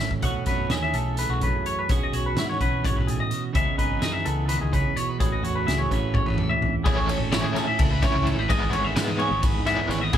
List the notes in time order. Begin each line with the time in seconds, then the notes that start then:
Already playing: E3 C#4 G#4 E5
0.00 A2
0.11 kick
0.22 B1 B2 A3 C#4 F#4 F#5, kick, closed hi-hat
0.46 F#2 C#4 B4, kick, snare, closed hi-hat
0.69 D#2 E3 G#4 D#5, snare, closed hi-hat
0.82 E5
0.93 B1 A3 A4, closed hi-hat
1.17 B4, closed hi-hat
1.29 B1 F#4
1.41 F#2 B4, kick, closed hi-hat
1.66 C#5, closed hi-hat
1.79 B4
1.89 B1 B2 C#4 F#4 G#4, kick, closed hi-hat
2.03 D#5
2.12 B1 F#4 C#5, closed hi-hat
2.26 B4
2.35 G#2 E3 F#4 E5, snare, closed hi-hat
2.49 C#5
2.61 B1 C#4 B4, kick, closed hi-hat
2.83 G#2 C#5, kick, closed hi-hat
2.96 B1 B4
3.07 A2 G#4, closed hi-hat
3.20 D#5
3.31 B2, closed hi-hat
3.53 C#2 C#3 B3 D#4 G#4 E5, kick, closed hi-hat
3.78 G#1 D#4 B4, kick, closed hi-hat
4.00 F#2 E3 G#4 D#5, snare, closed hi-hat
4.12 E5
4.25 C#2 B3 A4, closed hi-hat
4.48 D#3 B4, closed hi-hat
4.61 C#2 G#4
4.72 C#3 B4, kick, closed hi-hat
4.96 B2 C#5, closed hi-hat
5.08 B4
5.19 A1 A2 C#4 F#4 G#4 B4, kick, closed hi-hat
5.32 D#5
5.43 E2 F#4 C#5, closed hi-hat
5.55 B4
5.66 C#2 E3 G#4 E5, snare, closed hi-hat
5.79 C#5
5.90 A1 C#4 B4, kick, closed hi-hat
6.14 C#5, kick, high tom
6.26 A1 B4
6.37 E3 A4, mid tom
6.49 E5, mid tom
6.62 floor tom
6.84 A1 A2 E3 A3 C#4 E4 G#4, kick, ride
6.96 C#5
7.07 C#4 A4, ride
7.20 G#1
7.32 E3 A3 C#4 E4 C#5, snare, ride
7.44 G#4
7.55 A2 G#4 A4, snare, ride
7.67 E5
7.79 C#2 E4 A4, kick, ride
7.91 B4
8.03 E3 A3 C#4 E4 C#5, kick, snare, ride
8.14 C#2
8.26 E3 A4, ride
8.38 A1 B4
8.49 G#1 G#2 E3 G#3 B3 E4 G#4 D#5, kick, ride
8.72 G#1 B3 C#5, ride
8.84 E5
8.96 G#2 E3 G#3 B3 E4, snare, ride
9.09 D#5
9.19 G#4 C#5, ride
9.31 G#1
9.43 B4, kick, ride
9.54 G#2
9.65 E3 G#3 B3 E4 E5, snare, ride
9.88 G#1 E3 C#5, snare, ride
10.01 D#5
10.12 A1 A2 E3 A3 C#4 E4 G#4, kick, ride